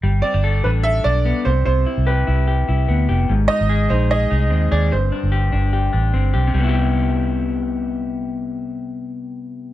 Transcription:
X:1
M:4/4
L:1/16
Q:1/4=148
K:C
V:1 name="Upright piano"
z2 d4 B2 e2 d4 c2 | c4 B8 z4 | z2 _e4 c2 e6 d2 | c12 z4 |
z16 | z16 |]
V:2 name="Clean electric guitar"
G,2 C D A2 D2 A2 D2 B,2 C,2 | C,2 E2 G2 E2 G2 E2 B,2 G2 | _A,,2 _E2 _A2 E2 A2 E2 C2 A2 | G,,2 D2 G2 D2 G2 D2 C2 G2 |
[C,G,B,EG]16- | [C,G,B,EG]16 |]
V:3 name="Fingered electric bass" clef=bass
G,,,2 z G,,,3 A,,,4 B,,,3 z C,,2 | C,,2 z C,,3 C,,4 C,,2 D,,2 F,,,2 | _A,,,2 z A,,,3 _B,,,4 C,,2 _E,,2 E,,2 | G,,,2 z G,,,3 G,,,4 A,,,2 G,,,2 B,,,2 |
C,,16- | C,,16 |]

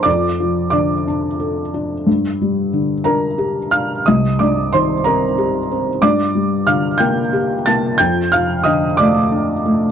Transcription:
X:1
M:6/8
L:1/8
Q:3/8=60
K:Gm
V:1 name="Felt piano"
[dd']2 [dd'] z3 | z3 [Bb]2 [ff'] | [ee'] [dd'] [cc'] [Bb]3 | [dd']2 [ff'] [gg']2 [aa'] |
[gg'] [ff'] [ee'] [dd']3 |]
V:2 name="Felt piano" clef=bass
F,, F, D, D A D | G,, G, D, D G D | C,, G,, E, C G C | G,, G, D, B, G B, |
F,, F, D, A, D A, |]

